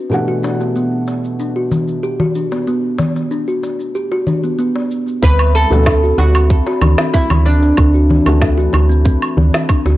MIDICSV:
0, 0, Header, 1, 8, 480
1, 0, Start_track
1, 0, Tempo, 638298
1, 88, Time_signature, 4, 2, 24, 8
1, 7499, End_track
2, 0, Start_track
2, 0, Title_t, "Oud"
2, 0, Program_c, 0, 24
2, 3936, Note_on_c, 0, 71, 104
2, 4170, Note_off_c, 0, 71, 0
2, 4173, Note_on_c, 0, 69, 102
2, 4646, Note_off_c, 0, 69, 0
2, 4649, Note_on_c, 0, 66, 92
2, 5339, Note_off_c, 0, 66, 0
2, 5366, Note_on_c, 0, 64, 96
2, 5607, Note_on_c, 0, 62, 84
2, 5614, Note_off_c, 0, 64, 0
2, 6298, Note_off_c, 0, 62, 0
2, 7499, End_track
3, 0, Start_track
3, 0, Title_t, "Singing bowl"
3, 0, Program_c, 1, 14
3, 0, Note_on_c, 1, 59, 65
3, 0, Note_on_c, 1, 71, 63
3, 3926, Note_on_c, 1, 60, 74
3, 3929, Note_on_c, 1, 83, 79
3, 3938, Note_off_c, 1, 59, 0
3, 3938, Note_off_c, 1, 71, 0
3, 7499, Note_off_c, 1, 60, 0
3, 7499, Note_off_c, 1, 83, 0
3, 7499, End_track
4, 0, Start_track
4, 0, Title_t, "Kalimba"
4, 0, Program_c, 2, 108
4, 87, Note_on_c, 2, 67, 76
4, 201, Note_off_c, 2, 67, 0
4, 211, Note_on_c, 2, 66, 89
4, 321, Note_off_c, 2, 66, 0
4, 326, Note_on_c, 2, 62, 66
4, 440, Note_off_c, 2, 62, 0
4, 455, Note_on_c, 2, 59, 66
4, 557, Note_off_c, 2, 59, 0
4, 570, Note_on_c, 2, 59, 85
4, 688, Note_off_c, 2, 59, 0
4, 1050, Note_on_c, 2, 62, 69
4, 1168, Note_off_c, 2, 62, 0
4, 1173, Note_on_c, 2, 66, 73
4, 1282, Note_off_c, 2, 66, 0
4, 1529, Note_on_c, 2, 67, 78
4, 1641, Note_off_c, 2, 67, 0
4, 1654, Note_on_c, 2, 66, 91
4, 1763, Note_off_c, 2, 66, 0
4, 1771, Note_on_c, 2, 62, 63
4, 1882, Note_off_c, 2, 62, 0
4, 1896, Note_on_c, 2, 59, 69
4, 1998, Note_off_c, 2, 59, 0
4, 2011, Note_on_c, 2, 59, 92
4, 2129, Note_off_c, 2, 59, 0
4, 2490, Note_on_c, 2, 62, 74
4, 2608, Note_off_c, 2, 62, 0
4, 2616, Note_on_c, 2, 66, 69
4, 2724, Note_off_c, 2, 66, 0
4, 2971, Note_on_c, 2, 67, 72
4, 3083, Note_off_c, 2, 67, 0
4, 3096, Note_on_c, 2, 66, 94
4, 3204, Note_off_c, 2, 66, 0
4, 3212, Note_on_c, 2, 62, 72
4, 3323, Note_off_c, 2, 62, 0
4, 3336, Note_on_c, 2, 59, 69
4, 3438, Note_off_c, 2, 59, 0
4, 3449, Note_on_c, 2, 59, 94
4, 3568, Note_off_c, 2, 59, 0
4, 3930, Note_on_c, 2, 60, 100
4, 4048, Note_off_c, 2, 60, 0
4, 4412, Note_on_c, 2, 62, 79
4, 4530, Note_off_c, 2, 62, 0
4, 4536, Note_on_c, 2, 66, 78
4, 4644, Note_off_c, 2, 66, 0
4, 4893, Note_on_c, 2, 69, 85
4, 5004, Note_off_c, 2, 69, 0
4, 5018, Note_on_c, 2, 66, 108
4, 5125, Note_off_c, 2, 66, 0
4, 5131, Note_on_c, 2, 62, 75
4, 5243, Note_off_c, 2, 62, 0
4, 5259, Note_on_c, 2, 60, 75
4, 5360, Note_off_c, 2, 60, 0
4, 5371, Note_on_c, 2, 60, 108
4, 5489, Note_off_c, 2, 60, 0
4, 5851, Note_on_c, 2, 62, 82
4, 5969, Note_off_c, 2, 62, 0
4, 5973, Note_on_c, 2, 66, 72
4, 6082, Note_off_c, 2, 66, 0
4, 6325, Note_on_c, 2, 69, 79
4, 6440, Note_off_c, 2, 69, 0
4, 6449, Note_on_c, 2, 66, 99
4, 6560, Note_off_c, 2, 66, 0
4, 6564, Note_on_c, 2, 62, 74
4, 6679, Note_off_c, 2, 62, 0
4, 6689, Note_on_c, 2, 60, 76
4, 6794, Note_off_c, 2, 60, 0
4, 6806, Note_on_c, 2, 60, 102
4, 6926, Note_off_c, 2, 60, 0
4, 7286, Note_on_c, 2, 62, 93
4, 7406, Note_off_c, 2, 62, 0
4, 7412, Note_on_c, 2, 66, 80
4, 7499, Note_off_c, 2, 66, 0
4, 7499, End_track
5, 0, Start_track
5, 0, Title_t, "Felt piano"
5, 0, Program_c, 3, 0
5, 72, Note_on_c, 3, 47, 71
5, 81, Note_on_c, 3, 52, 62
5, 88, Note_on_c, 3, 57, 63
5, 97, Note_on_c, 3, 62, 65
5, 104, Note_on_c, 3, 78, 79
5, 3893, Note_off_c, 3, 47, 0
5, 3897, Note_off_c, 3, 52, 0
5, 3900, Note_off_c, 3, 57, 0
5, 3905, Note_off_c, 3, 62, 0
5, 3909, Note_off_c, 3, 78, 0
5, 4289, Note_on_c, 3, 47, 79
5, 4291, Note_on_c, 3, 52, 74
5, 4294, Note_on_c, 3, 57, 83
5, 4300, Note_on_c, 3, 62, 77
5, 4302, Note_on_c, 3, 66, 91
5, 4375, Note_off_c, 3, 47, 0
5, 4377, Note_off_c, 3, 52, 0
5, 4378, Note_off_c, 3, 57, 0
5, 4381, Note_off_c, 3, 62, 0
5, 4382, Note_off_c, 3, 66, 0
5, 6207, Note_on_c, 3, 52, 68
5, 6215, Note_on_c, 3, 57, 67
5, 6223, Note_on_c, 3, 62, 73
5, 6230, Note_on_c, 3, 66, 79
5, 7499, Note_off_c, 3, 52, 0
5, 7499, Note_off_c, 3, 57, 0
5, 7499, Note_off_c, 3, 62, 0
5, 7499, Note_off_c, 3, 66, 0
5, 7499, End_track
6, 0, Start_track
6, 0, Title_t, "FM bass"
6, 0, Program_c, 4, 39
6, 3930, Note_on_c, 4, 38, 95
6, 4252, Note_off_c, 4, 38, 0
6, 4292, Note_on_c, 4, 38, 78
6, 4609, Note_off_c, 4, 38, 0
6, 4647, Note_on_c, 4, 38, 86
6, 4971, Note_off_c, 4, 38, 0
6, 5125, Note_on_c, 4, 38, 93
6, 5226, Note_off_c, 4, 38, 0
6, 5492, Note_on_c, 4, 38, 83
6, 5809, Note_off_c, 4, 38, 0
6, 5850, Note_on_c, 4, 38, 102
6, 6172, Note_off_c, 4, 38, 0
6, 6212, Note_on_c, 4, 38, 79
6, 6529, Note_off_c, 4, 38, 0
6, 6568, Note_on_c, 4, 38, 85
6, 6891, Note_off_c, 4, 38, 0
6, 7047, Note_on_c, 4, 38, 89
6, 7146, Note_off_c, 4, 38, 0
6, 7411, Note_on_c, 4, 38, 81
6, 7499, Note_off_c, 4, 38, 0
6, 7499, End_track
7, 0, Start_track
7, 0, Title_t, "Darbuka"
7, 334, Note_on_c, 9, 63, 64
7, 409, Note_off_c, 9, 63, 0
7, 458, Note_on_c, 9, 62, 38
7, 533, Note_off_c, 9, 62, 0
7, 810, Note_on_c, 9, 62, 55
7, 885, Note_off_c, 9, 62, 0
7, 1290, Note_on_c, 9, 64, 76
7, 1292, Note_on_c, 9, 62, 48
7, 1292, Note_on_c, 9, 63, 32
7, 1365, Note_off_c, 9, 64, 0
7, 1367, Note_off_c, 9, 63, 0
7, 1368, Note_off_c, 9, 62, 0
7, 1652, Note_on_c, 9, 64, 85
7, 1727, Note_off_c, 9, 64, 0
7, 1895, Note_on_c, 9, 63, 57
7, 1970, Note_off_c, 9, 63, 0
7, 2245, Note_on_c, 9, 63, 74
7, 2251, Note_on_c, 9, 64, 94
7, 2320, Note_off_c, 9, 63, 0
7, 2326, Note_off_c, 9, 64, 0
7, 2379, Note_on_c, 9, 62, 46
7, 2454, Note_off_c, 9, 62, 0
7, 2733, Note_on_c, 9, 62, 57
7, 2808, Note_off_c, 9, 62, 0
7, 3095, Note_on_c, 9, 63, 30
7, 3170, Note_off_c, 9, 63, 0
7, 3210, Note_on_c, 9, 64, 82
7, 3285, Note_off_c, 9, 64, 0
7, 3577, Note_on_c, 9, 63, 54
7, 3581, Note_on_c, 9, 62, 43
7, 3652, Note_off_c, 9, 63, 0
7, 3656, Note_off_c, 9, 62, 0
7, 4301, Note_on_c, 9, 62, 55
7, 4376, Note_off_c, 9, 62, 0
7, 4659, Note_on_c, 9, 62, 68
7, 4735, Note_off_c, 9, 62, 0
7, 5013, Note_on_c, 9, 63, 82
7, 5088, Note_off_c, 9, 63, 0
7, 5127, Note_on_c, 9, 64, 89
7, 5128, Note_on_c, 9, 62, 58
7, 5202, Note_off_c, 9, 64, 0
7, 5203, Note_off_c, 9, 62, 0
7, 5496, Note_on_c, 9, 64, 95
7, 5497, Note_on_c, 9, 63, 62
7, 5571, Note_off_c, 9, 64, 0
7, 5572, Note_off_c, 9, 63, 0
7, 5734, Note_on_c, 9, 62, 40
7, 5809, Note_off_c, 9, 62, 0
7, 6095, Note_on_c, 9, 64, 96
7, 6170, Note_off_c, 9, 64, 0
7, 6216, Note_on_c, 9, 62, 55
7, 6291, Note_off_c, 9, 62, 0
7, 6564, Note_on_c, 9, 62, 69
7, 6639, Note_off_c, 9, 62, 0
7, 7051, Note_on_c, 9, 64, 101
7, 7127, Note_off_c, 9, 64, 0
7, 7173, Note_on_c, 9, 62, 38
7, 7249, Note_off_c, 9, 62, 0
7, 7414, Note_on_c, 9, 63, 67
7, 7418, Note_on_c, 9, 62, 55
7, 7489, Note_off_c, 9, 63, 0
7, 7494, Note_off_c, 9, 62, 0
7, 7499, End_track
8, 0, Start_track
8, 0, Title_t, "Drums"
8, 89, Note_on_c, 9, 82, 40
8, 165, Note_off_c, 9, 82, 0
8, 331, Note_on_c, 9, 82, 76
8, 406, Note_off_c, 9, 82, 0
8, 456, Note_on_c, 9, 82, 30
8, 532, Note_off_c, 9, 82, 0
8, 571, Note_on_c, 9, 82, 41
8, 646, Note_off_c, 9, 82, 0
8, 809, Note_on_c, 9, 82, 72
8, 884, Note_off_c, 9, 82, 0
8, 936, Note_on_c, 9, 82, 31
8, 1012, Note_off_c, 9, 82, 0
8, 1051, Note_on_c, 9, 82, 41
8, 1126, Note_off_c, 9, 82, 0
8, 1290, Note_on_c, 9, 82, 75
8, 1365, Note_off_c, 9, 82, 0
8, 1413, Note_on_c, 9, 82, 33
8, 1489, Note_off_c, 9, 82, 0
8, 1529, Note_on_c, 9, 82, 42
8, 1604, Note_off_c, 9, 82, 0
8, 1768, Note_on_c, 9, 82, 75
8, 1843, Note_off_c, 9, 82, 0
8, 1893, Note_on_c, 9, 82, 32
8, 1968, Note_off_c, 9, 82, 0
8, 2010, Note_on_c, 9, 82, 43
8, 2085, Note_off_c, 9, 82, 0
8, 2250, Note_on_c, 9, 82, 72
8, 2325, Note_off_c, 9, 82, 0
8, 2377, Note_on_c, 9, 82, 28
8, 2452, Note_off_c, 9, 82, 0
8, 2492, Note_on_c, 9, 82, 41
8, 2567, Note_off_c, 9, 82, 0
8, 2617, Note_on_c, 9, 82, 30
8, 2693, Note_off_c, 9, 82, 0
8, 2733, Note_on_c, 9, 82, 77
8, 2809, Note_off_c, 9, 82, 0
8, 2857, Note_on_c, 9, 82, 31
8, 2932, Note_off_c, 9, 82, 0
8, 2971, Note_on_c, 9, 82, 41
8, 3046, Note_off_c, 9, 82, 0
8, 3211, Note_on_c, 9, 82, 74
8, 3286, Note_off_c, 9, 82, 0
8, 3337, Note_on_c, 9, 82, 31
8, 3412, Note_off_c, 9, 82, 0
8, 3452, Note_on_c, 9, 82, 42
8, 3527, Note_off_c, 9, 82, 0
8, 3693, Note_on_c, 9, 82, 74
8, 3768, Note_off_c, 9, 82, 0
8, 3818, Note_on_c, 9, 82, 32
8, 3893, Note_off_c, 9, 82, 0
8, 3930, Note_on_c, 9, 36, 106
8, 3932, Note_on_c, 9, 82, 54
8, 4006, Note_off_c, 9, 36, 0
8, 4007, Note_off_c, 9, 82, 0
8, 4055, Note_on_c, 9, 77, 81
8, 4059, Note_on_c, 9, 82, 34
8, 4131, Note_off_c, 9, 77, 0
8, 4134, Note_off_c, 9, 82, 0
8, 4300, Note_on_c, 9, 82, 65
8, 4375, Note_off_c, 9, 82, 0
8, 4409, Note_on_c, 9, 38, 85
8, 4409, Note_on_c, 9, 77, 78
8, 4410, Note_on_c, 9, 36, 96
8, 4413, Note_on_c, 9, 82, 54
8, 4484, Note_off_c, 9, 38, 0
8, 4484, Note_off_c, 9, 77, 0
8, 4486, Note_off_c, 9, 36, 0
8, 4488, Note_off_c, 9, 82, 0
8, 4541, Note_on_c, 9, 82, 34
8, 4616, Note_off_c, 9, 82, 0
8, 4775, Note_on_c, 9, 77, 78
8, 4778, Note_on_c, 9, 82, 67
8, 4850, Note_off_c, 9, 77, 0
8, 4854, Note_off_c, 9, 82, 0
8, 4890, Note_on_c, 9, 36, 104
8, 4891, Note_on_c, 9, 82, 53
8, 4965, Note_off_c, 9, 36, 0
8, 4966, Note_off_c, 9, 82, 0
8, 5018, Note_on_c, 9, 82, 33
8, 5093, Note_off_c, 9, 82, 0
8, 5125, Note_on_c, 9, 77, 79
8, 5200, Note_off_c, 9, 77, 0
8, 5250, Note_on_c, 9, 38, 87
8, 5254, Note_on_c, 9, 82, 72
8, 5325, Note_off_c, 9, 38, 0
8, 5329, Note_off_c, 9, 82, 0
8, 5370, Note_on_c, 9, 36, 106
8, 5370, Note_on_c, 9, 82, 55
8, 5445, Note_off_c, 9, 36, 0
8, 5445, Note_off_c, 9, 82, 0
8, 5491, Note_on_c, 9, 77, 82
8, 5495, Note_on_c, 9, 82, 33
8, 5566, Note_off_c, 9, 77, 0
8, 5570, Note_off_c, 9, 82, 0
8, 5734, Note_on_c, 9, 82, 64
8, 5809, Note_off_c, 9, 82, 0
8, 5846, Note_on_c, 9, 77, 78
8, 5849, Note_on_c, 9, 82, 54
8, 5850, Note_on_c, 9, 36, 108
8, 5921, Note_off_c, 9, 77, 0
8, 5925, Note_off_c, 9, 36, 0
8, 5925, Note_off_c, 9, 82, 0
8, 5977, Note_on_c, 9, 82, 34
8, 6052, Note_off_c, 9, 82, 0
8, 6213, Note_on_c, 9, 77, 73
8, 6217, Note_on_c, 9, 82, 63
8, 6289, Note_off_c, 9, 77, 0
8, 6292, Note_off_c, 9, 82, 0
8, 6329, Note_on_c, 9, 36, 103
8, 6329, Note_on_c, 9, 38, 84
8, 6332, Note_on_c, 9, 82, 59
8, 6404, Note_off_c, 9, 38, 0
8, 6405, Note_off_c, 9, 36, 0
8, 6408, Note_off_c, 9, 82, 0
8, 6460, Note_on_c, 9, 82, 35
8, 6535, Note_off_c, 9, 82, 0
8, 6571, Note_on_c, 9, 77, 78
8, 6647, Note_off_c, 9, 77, 0
8, 6700, Note_on_c, 9, 82, 71
8, 6775, Note_off_c, 9, 82, 0
8, 6809, Note_on_c, 9, 36, 106
8, 6814, Note_on_c, 9, 82, 60
8, 6885, Note_off_c, 9, 36, 0
8, 6890, Note_off_c, 9, 82, 0
8, 6936, Note_on_c, 9, 77, 81
8, 6939, Note_on_c, 9, 82, 36
8, 7011, Note_off_c, 9, 77, 0
8, 7015, Note_off_c, 9, 82, 0
8, 7176, Note_on_c, 9, 38, 83
8, 7179, Note_on_c, 9, 82, 69
8, 7251, Note_off_c, 9, 38, 0
8, 7254, Note_off_c, 9, 82, 0
8, 7287, Note_on_c, 9, 77, 82
8, 7289, Note_on_c, 9, 36, 112
8, 7290, Note_on_c, 9, 82, 56
8, 7362, Note_off_c, 9, 77, 0
8, 7365, Note_off_c, 9, 36, 0
8, 7366, Note_off_c, 9, 82, 0
8, 7417, Note_on_c, 9, 82, 37
8, 7492, Note_off_c, 9, 82, 0
8, 7499, End_track
0, 0, End_of_file